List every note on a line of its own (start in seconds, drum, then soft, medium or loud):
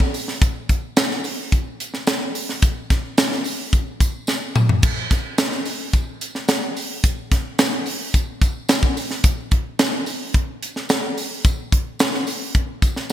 0.00 kick medium
0.14 open hi-hat medium
0.14 tambourine medium
0.28 snare soft
0.41 kick loud
0.41 closed hi-hat loud
0.41 tambourine soft
0.69 kick medium
0.69 closed hi-hat medium
0.69 tambourine soft
0.96 snare loud
0.96 closed hi-hat medium
0.96 tambourine medium
1.11 snare soft
1.24 open hi-hat medium
1.24 tambourine soft
1.52 kick medium
1.52 closed hi-hat medium
1.52 tambourine soft
1.80 closed hi-hat medium
1.80 tambourine soft
1.94 snare soft
2.07 snare medium
2.07 closed hi-hat medium
2.07 tambourine medium
2.35 open hi-hat medium
2.35 tambourine medium
2.49 snare soft
2.62 kick loud
2.62 closed hi-hat loud
2.62 tambourine soft
2.90 kick medium
2.90 snare soft
2.90 closed hi-hat medium
2.90 tambourine soft
3.18 snare loud
3.18 closed hi-hat medium
3.18 tambourine medium
3.32 snare soft
3.44 open hi-hat medium
3.44 tambourine soft
3.73 kick medium
3.73 closed hi-hat medium
3.73 tambourine soft
4.00 kick medium
4.00 closed hi-hat medium
4.00 tambourine soft
4.27 snare medium
4.27 tambourine medium
4.55 mid tom medium
4.55 tambourine medium
4.69 floor tom medium
4.83 kick loud
4.83 crash medium
4.83 tambourine soft
5.11 kick medium
5.11 snare soft
5.11 closed hi-hat medium
5.11 tambourine soft
5.38 snare loud
5.38 closed hi-hat medium
5.38 tambourine medium
5.52 snare soft
5.65 open hi-hat medium
5.65 tambourine soft
5.93 kick medium
5.93 closed hi-hat medium
5.93 tambourine soft
6.21 closed hi-hat medium
6.21 tambourine soft
6.35 snare soft
6.48 snare medium
6.48 closed hi-hat medium
6.48 tambourine medium
6.77 open hi-hat medium
6.77 tambourine medium
7.04 kick loud
7.04 closed hi-hat loud
7.04 tambourine soft
7.32 kick medium
7.32 snare soft
7.32 closed hi-hat medium
7.59 snare loud
7.59 closed hi-hat medium
7.59 tambourine medium
7.86 open hi-hat medium
7.86 tambourine soft
8.14 kick medium
8.14 closed hi-hat medium
8.14 tambourine soft
8.42 kick medium
8.42 closed hi-hat medium
8.42 tambourine soft
8.69 snare loud
8.69 closed hi-hat medium
8.69 tambourine medium
8.83 kick medium
8.97 open hi-hat medium
8.97 tambourine medium
9.11 snare soft
9.24 kick loud
9.24 closed hi-hat loud
9.24 tambourine soft
9.51 kick medium
9.51 closed hi-hat medium
9.79 snare loud
9.79 closed hi-hat medium
9.79 tambourine medium
10.06 open hi-hat medium
10.06 tambourine soft
10.34 kick medium
10.34 closed hi-hat medium
10.62 closed hi-hat medium
10.62 tambourine medium
10.76 snare soft
10.89 snare loud
10.89 closed hi-hat medium
10.89 tambourine medium
11.18 open hi-hat medium
11.18 tambourine medium
11.44 kick loud
11.44 closed hi-hat loud
11.44 tambourine soft
11.72 kick medium
11.72 closed hi-hat medium
11.99 snare loud
11.99 closed hi-hat medium
11.99 tambourine medium
12.14 snare soft
12.27 open hi-hat medium
12.27 tambourine soft
12.55 kick medium
12.55 closed hi-hat medium
12.82 kick medium
12.82 closed hi-hat medium
12.82 tambourine soft
12.96 snare soft